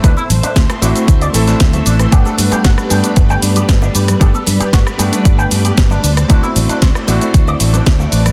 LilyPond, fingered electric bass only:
\new Staff \with { instrumentName = "Fingered electric bass" } { \clef bass \time 4/4 \key g \major \tempo 4 = 115 d,8 a,,8 d,8 a,,8 d,8 a,,8 d,8 a,,8 | g,,8 g,8 g,,8 g,8 g,,8 g,8 g,,8 g,8 | g,,8 g,8 g,,8 g,8 g,,8 g,8 g,,8 d,8 | d,8 a,,8 d,8 a,,8 d,8 a,,8 d,8 a,,8 | }